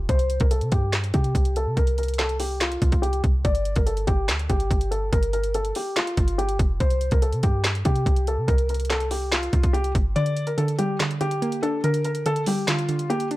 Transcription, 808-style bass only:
0.09 0.39 C2 loud
0.41 0.63 C2 loud
0.62 0.71 C3 loud
0.72 1.12 G2 loud
1.14 1.34 C3 loud
1.35 1.68 C2 loud
1.66 1.76 C3 loud
1.77 2.78 C2 loud
2.82 3.22 C2 loud
3.24 3.44 C2 loud
3.45 3.75 G1 loud
3.76 4.06 G1 loud
4.08 4.30 G1 loud
4.29 4.49 D2 loud
4.50 4.70 G1 loud
4.71 5.11 G1 loud
5.13 5.73 G1 loud
6.17 6.58 G1 loud
6.59 6.79 F1 loud
6.80 7.11 C2 loud
7.12 7.34 C2 loud
7.33 7.43 C3 loud
7.43 7.84 G2 loud
7.85 8.05 C3 loud
8.06 8.39 C2 loud
8.38 8.48 C3 loud
8.48 9.49 C2 loud
9.53 9.93 C2 loud
9.95 10.16 G1 loud

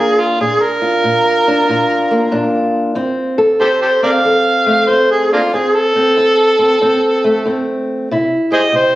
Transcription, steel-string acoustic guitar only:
0.00 0.36 A#2 medium
0.00 0.38 A#3 medium
0.00 0.38 D4 medium
0.00 0.81 F4 medium
0.40 1.00 A#2 medium
0.40 1.46 D4 medium
0.82 1.70 F4 medium
1.04 1.63 A#2 medium
1.48 2.31 D4 medium
1.69 2.28 A#2 medium
1.69 3.38 F4 medium
2.11 2.94 A#3 medium
2.32 2.91 A#2 medium
2.32 2.93 D4 medium
2.95 3.55 F2 medium
2.95 4.02 C4 medium
3.38 4.25 A4 medium
3.60 4.20 F2 medium
4.03 4.89 C4 medium
4.25 4.84 F2 medium
4.25 5.50 A4 medium
4.66 5.50 A3 medium
4.88 5.48 F2 medium
4.88 5.53 C4 medium
5.53 6.13 F2 medium
5.53 5.95 C4 medium
5.96 6.58 C4 medium
6.17 6.77 F2 medium
6.59 6.82 C4 medium
6.81 7.41 F2 medium
6.81 7.45 C4 medium
7.24 8.08 A3 medium
7.46 8.05 F2 medium
7.46 8.10 C4 medium
8.11 8.70 C3 medium
8.11 8.95 E4 medium
8.52 8.95 G4 medium
8.72 8.95 C3 medium

